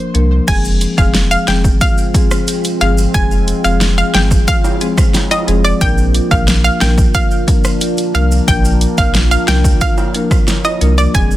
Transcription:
Already playing: F3 A#3 D4 A#4 C5
0.14 C2 F3 A#3 D4 A#4, closed hi-hat
0.48 F1 F3 G#3 C4 F4 G#4 G#5, kick, closed hi-hat, crash, maracas
0.65 maracas
0.81 closed hi-hat, maracas
0.97 F1 F3 G#3 C4 G#4 F5, kick, maracas
1.14 snare, closed hi-hat, maracas
1.31 F5, maracas
1.48 F1 F3 G#3 C4 G#4 G5, snare, closed hi-hat, maracas
1.64 kick, maracas
1.81 F5, kick, closed hi-hat, maracas
1.98 maracas
2.14 F3 G#3 C4 G#4, kick, closed hi-hat, maracas
2.31 cross-stick, maracas
2.48 closed hi-hat, maracas
2.64 closed hi-hat, maracas
2.81 G1 F3 G#3 C4 G#4 F5, closed hi-hat, maracas
2.98 maracas
3.14 F1 F3 G#3 C4 G#4 G#5, kick, closed hi-hat, maracas
3.31 maracas
3.48 closed hi-hat, maracas
3.64 F1 F3 G#3 C4 G#4 F5, maracas
3.81 snare, closed hi-hat, maracas
3.98 F5, maracas
4.14 G1 F3 G#3 C4 G#4 G5, snare, closed hi-hat, maracas
4.31 kick, maracas
4.48 F5, kick, closed hi-hat, maracas
4.64 high timbale, maracas
4.81 F3 G#3 C4 G#4, closed hi-hat, maracas
4.98 kick, cross-stick, maracas
5.14 snare, closed hi-hat, high timbale, maracas
5.31 D#5, closed hi-hat, high timbale, maracas
5.48 F1 F3 G#3 C4 G#4, closed hi-hat, maracas
5.65 D5, maracas
5.81 A#1 F3 A#3 D4 A#4 G5, kick, closed hi-hat, maracas
5.98 maracas
6.15 closed hi-hat, maracas
6.31 A#1 F3 A#3 D4 A#4 F5, kick, maracas
6.48 snare, closed hi-hat, maracas
6.64 F5, maracas
6.81 A#1 F3 A#3 D4 A#4 G5, snare, closed hi-hat, maracas
6.98 kick, maracas
7.15 F5, kick, closed hi-hat, maracas
7.31 maracas
7.48 F3 A#3 D4 A#4, kick, closed hi-hat, maracas
7.64 cross-stick, maracas
7.81 closed hi-hat, maracas
7.98 closed hi-hat, maracas
8.14 C2 F3 A#3 D4 A#4 F5, closed hi-hat, maracas
8.32 maracas
8.48 A#1 F3 A#3 D4 A#4 G5, kick, closed hi-hat, maracas
8.65 maracas
8.81 closed hi-hat, maracas
8.98 A#1 F3 A#3 D4 A#4 F5, kick, maracas
9.15 snare, closed hi-hat, maracas
9.31 F5, maracas
9.48 C2 F3 A#3 D4 A#4 G5, snare, closed hi-hat, maracas
9.64 kick, maracas
9.81 F5, kick, closed hi-hat, maracas
9.98 high timbale, maracas
10.14 F3 A#3 D4 A#4, closed hi-hat, maracas
10.31 kick, cross-stick, maracas
10.48 snare, closed hi-hat, high timbale, maracas
10.65 D#5, high timbale, maracas
10.81 C2 F3 A#3 D4 A#4, closed hi-hat, maracas
10.98 D5, maracas
11.14 F1 F3 G#3 C4 G#4 G#5, kick, closed hi-hat, maracas
11.31 maracas

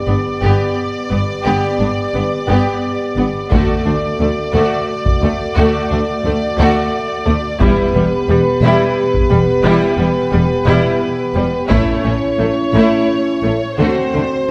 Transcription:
Already playing: B3 G4 D5
0.07 G1 G2 B3
0.42 G1 G2 B3 G4
1.10 G1 G2 B3
1.44 G1 G2 B3 G4
1.80 G1 G2 B3 D4
2.14 G1 G2 B3
2.48 G1 G2 B3 G4
3.17 G1 G2 B3
3.51 D2 A3 F#4 D5, taiko
3.85 D2 A3 D4
4.19 D2 A3
4.54 D2 A3 F#4
5.06 taiko
5.22 D2 A3
5.57 D2 A3 F#4
5.90 D2 A3 D4
6.24 D2 A3
6.58 D2 A3 F#4
7.25 D2 A3
7.60 E1 E2 G3 B3 E4 G4 B4, taiko
7.94 E1 E2 G3 B3
8.28 E1 E2 G3
8.62 E1 E2 G3 E4
9.14 taiko
9.30 E1 E2 G3
9.64 E1 E2 G3 E4
9.98 E1 E2 G3 B3
10.32 E1 E2 G3
10.66 E1 E2 G3 E4
11.35 E1 E2 G3
11.69 A1 A2 A3 C#4 E4 C#5, taiko
12.04 A1 A2 A3 C#4
12.38 A1 A2 A3
12.73 A1 A2 A3 E4
13.43 A1 A2 A3
13.78 D2 D3 A3 C4 F#4 C5
14.14 D2 D3 A3 D4

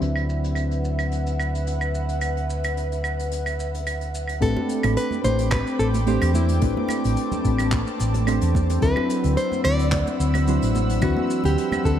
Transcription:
Already playing: E5
0.00 D2 F#3 C4 D4 E4 B4 F#5, closed hi-hat, shaker
0.16 closed hi-hat, claves
0.29 shaker
0.44 closed hi-hat, shaker
0.55 closed hi-hat, claves, shaker
0.71 closed hi-hat, shaker
0.85 shaker
0.98 closed hi-hat, claves, shaker
1.11 closed hi-hat, shaker
1.27 closed hi-hat, shaker
1.40 claves, shaker
1.55 closed hi-hat, shaker
1.67 closed hi-hat, shaker
1.81 claves, shaker
1.95 shaker
2.09 closed hi-hat, shaker
2.21 closed hi-hat, claves, shaker
2.37 closed hi-hat
2.50 shaker
2.64 closed hi-hat, claves, shaker
2.77 closed hi-hat, shaker
2.92 closed hi-hat, shaker
3.04 claves, shaker
3.19 closed hi-hat, shaker
3.31 closed hi-hat, shaker
3.46 closed hi-hat, claves, shaker
3.60 shaker
3.74 closed hi-hat, shaker
3.86 closed hi-hat, claves, shaker
4.01 closed hi-hat, shaker
4.15 shaker
4.28 closed hi-hat, claves, shaker
4.41 A1 A3 C4 D4 G4 A4 B4 G5 B5 D6, kick, closed hi-hat, shaker
4.57 muted conga, high conga
4.69 closed hi-hat, shaker
4.83 A1, closed hi-hat, muted conga, claves, shaker
4.96 B4, closed hi-hat, shaker
5.11 high conga, shaker
5.23 A1 A3 C4 D4 G4 B4 C5, closed hi-hat, muted conga, shaker
5.38 closed hi-hat, shaker
5.51 B4, kick, clap, closed hi-hat, muted conga, high conga, claves, shaker
5.67 shaker
5.79 A1 A4, shaker
5.94 closed hi-hat, muted conga, high conga, shaker
6.07 A3 C4 D4 G4 C5, closed hi-hat, shaker
6.22 E2, closed hi-hat, muted conga, claves, shaker
6.34 E4, high conga, shaker
6.48 closed hi-hat, shaker
6.60 A1 A3 C4 D4 G4 B4 A5, kick, closed hi-hat, muted conga, shaker
6.77 high conga
6.89 closed hi-hat, muted conga, claves, shaker
7.04 A1, closed hi-hat, shaker
7.17 closed hi-hat, shaker
7.32 muted conga, high conga, low conga, shaker
7.44 A1 A3 C4 D4 G4 B4, kick, closed hi-hat, shaker
7.58 closed hi-hat, muted conga, claves, shaker
7.71 kick, clap, closed hi-hat, high conga, shaker
7.87 shaker
7.99 A1, closed hi-hat, muted conga, shaker
8.14 closed hi-hat, high conga, shaker
8.26 A3 C4 D4 G4 C5, closed hi-hat, muted conga, claves, shaker
8.41 E2, closed hi-hat, shaker
8.55 kick, high conga, shaker
8.69 closed hi-hat, muted conga, shaker
8.81 D2 F#3 C4 D4 E4 B4 F#5 B5 E6, kick, closed hi-hat, shaker
8.96 muted conga, high conga, claves
9.09 closed hi-hat, shaker
9.24 D2, closed hi-hat, shaker
9.37 C5, closed hi-hat, muted conga, shaker
9.52 high conga, shaker
9.64 D2 F#3 C4 D4 E4 B4 D5, closed hi-hat, muted conga, claves, shaker
9.79 closed hi-hat, shaker
9.92 kick, clap, closed hi-hat, high conga, shaker
10.07 muted conga, shaker
10.20 D2, shaker
10.34 closed hi-hat, muted conga, high conga, claves, shaker
10.47 F#3 C4 D4 E4 C5, closed hi-hat, shaker
10.62 A1, closed hi-hat, shaker
10.75 muted conga, high conga, shaker
10.89 closed hi-hat, shaker
11.01 D2 E3 C4 D4 E4 F#4 B4, kick, closed hi-hat, muted conga, claves, shaker
11.17 high conga
11.29 closed hi-hat, shaker
11.44 D2 G4, closed hi-hat, muted conga, shaker
11.58 closed hi-hat, shaker
11.72 muted conga, high conga, low conga, claves, shaker
11.83 D2 F#3 C4 D4 E4 A4 B4, kick, closed hi-hat, shaker

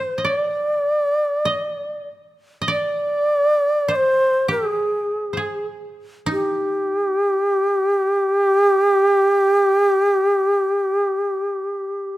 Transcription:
Already playing: G#4 C5
0.18 D#5
0.25 C#5 D5
0.37 D5
1.45 D#5
1.79 D5
2.62 D#5
2.68 D5
3.88 C5 D5
3.96 C5
4.48 G4 G#4
4.67 G#4
5.33 C5
5.37 G#4
6.26 D#4
6.32 G4
7.19 E4
7.55 F4
7.91 F#4
8.26 G4

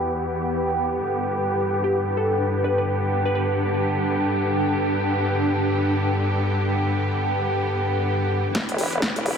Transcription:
Already playing: E2 E3 B3 E4 G4 B4 G5
0.99 G2 D3 D4
1.84 G4
2.17 A4
2.64 B4
2.78 B4
3.25 B4
3.35 B4
8.55 E1 E4, kick, snare, closed hi-hat, riser
8.69 closed hi-hat
8.78 E1, open hi-hat
8.93 closed hi-hat
9.02 kick, snare, closed hi-hat
9.16 E1, closed hi-hat
9.26 open hi-hat

